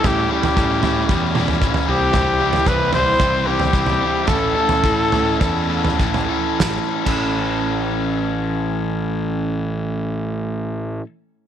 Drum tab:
CC |----------------|----------------|----------------|---x------------|
SD |----------------|----------------|----------------|o---------------|
T2 |----------o-----|----------------|----------------|----------------|
FT |o--o--o----o-o--|o--o--o----o-o--|o--o--o----o-o--|----------------|
BD |o---o---o---o---|o---o---o---o---|o---o---o---o---|o--o------------|

CC |----------------|
SD |----------------|
T2 |----------------|
FT |----------------|
BD |----------------|